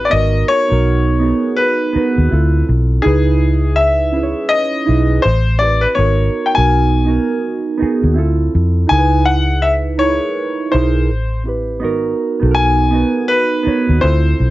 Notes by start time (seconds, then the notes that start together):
Already playing: A1 C4 E4 G4 B4
0.05 D5
0.09 G#1 B3 D#4 F#4 D#5
0.14 A#4
0.48 C#5
0.68 B1 B3 D#4 F#4
0.73 A#4
1.19 B3 D#4 F#4
1.24 G#4
1.56 B4
1.93 B3 D#4 F#4, muted fingered electric bass stroke
1.97 B4
2.18 D#2
2.29 D2 C4 E4 F4
2.33 A4
2.69 B1
3.02 C#2 D#4 E4 G#4
3.07 B4
3.76 E5
4.12 C#4 E4 G#4
4.17 B4
4.23 C#5
4.49 D#5
4.85 B1 D#4 E4 G#4
4.90 B4
5.22 A1 C5
5.59 C4 E4 G4 D5
5.63 B4
5.81 B4
5.95 G#1 B3 D#4 F#4 C#5
5.99 A#4
6.46 G5
6.54 B1 B3 D#4 F#4 G#5
6.58 A#4
7.05 B3 D#4 F#4
7.10 A#4
7.78 B3 D#4 F#4
7.82 G#4, muted fingered electric bass stroke
8.03 D#2
8.14 C4 E4 F4
8.18 D2 A4
8.55 F2
8.87 C#2 D#4 E4 G#4 G#5
8.92 A#4
8.98 B4
9.25 F#5
9.62 E5
9.98 D#4 E4 G#4 C#5
10.02 A#4
10.09 B4
10.71 B1 D#4 E4 G#4 C5
10.75 A#4
11.11 A1
11.44 C4 E4 G4
11.49 B4
11.80 G#1 B3 D#4 F#4
11.84 A#4
12.40 B1 B3 D#4 F#4
12.44 A4
12.51 A#4 G#5
12.91 B3 D#4 F#4
12.95 B4
13.28 B4
13.63 B3 D#4 F#4, muted fingered electric bass stroke
13.68 C#5
13.89 D#2
14.00 D2 C4 E4 F4 C5
14.04 A4
14.40 B1